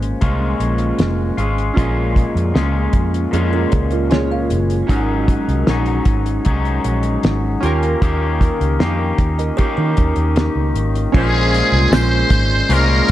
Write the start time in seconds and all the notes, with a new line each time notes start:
Already playing: G#1 A#2 G#3 C#4 F4 G#4 C5
0.03 closed hi-hat
0.21 C2 A#2 G#3 C#4 F4, kick, closed hi-hat
0.60 A#1, closed hi-hat
0.78 closed hi-hat
0.99 F1, snare, closed hi-hat
1.37 G#1 G#3 C#4 F4, closed hi-hat
1.58 closed hi-hat
1.74 A#1 A#2 G#3 C#4 F4 G#4, kick
1.78 D#5, closed hi-hat
2.16 kick, closed hi-hat
2.35 F2, closed hi-hat
2.54 C#2 A#2 G#3 C#4 F4, snare, closed hi-hat
2.93 F2, kick, closed hi-hat
3.14 closed hi-hat
3.31 F2 A#2 G#3 C#4 F4 G#4, closed hi-hat
3.53 F4 A#4
3.72 C#2 G#4 C#5, kick, closed hi-hat
3.91 F4 A#4, closed hi-hat
4.10 C#4 F4 G#4 C#5, snare, closed hi-hat
4.32 A#4 F5
4.50 F#1, closed hi-hat
4.70 closed hi-hat
4.87 G#1 G#2 F#3 C#4 D#4 F#4, kick, closed hi-hat
4.91 A#4
5.28 kick, closed hi-hat
5.48 C2, closed hi-hat
5.67 A#1 G#2 F#3 C#4 D#4, snare, closed hi-hat
5.86 closed hi-hat
6.05 G#1, kick, closed hi-hat
6.26 closed hi-hat
6.45 C2 G#2 F#3 C#4 D#4, kick, closed hi-hat
6.65 closed hi-hat
6.84 A#1, closed hi-hat
7.03 closed hi-hat
7.23 G#1, snare, closed hi-hat
7.60 D#2 C#4 F4 G4, closed hi-hat
7.65 A#3 A#4
7.83 closed hi-hat
8.02 D#2 D#3 A#3 C#4 G4, kick, closed hi-hat
8.41 kick, closed hi-hat
8.61 C#2, closed hi-hat
8.79 F2 D#3 A#3 C#4 G4, snare, closed hi-hat
9.18 D#2, kick, closed hi-hat
9.39 A#4 D#5, closed hi-hat
9.57 D#3 A#3 C#4 G4 C#5, kick, closed hi-hat
9.77 D#3 D#4 A#4
9.97 D#2, kick, closed hi-hat
10.16 D#2, closed hi-hat
10.36 snare, closed hi-hat
10.55 C#2
10.74 G#1, closed hi-hat
10.95 closed hi-hat
11.12 A#1 A#2 G#3 C#4 F4 G#4, kick, crash
11.16 C#4 F4 G#4 C5
11.54 closed hi-hat
11.72 C2
11.91 A#1 C5, snare, closed hi-hat, tambourine
12.30 G#1, kick, closed hi-hat
12.69 C2 A#2 G#3 C#4 F4 A#4, closed hi-hat
13.08 closed hi-hat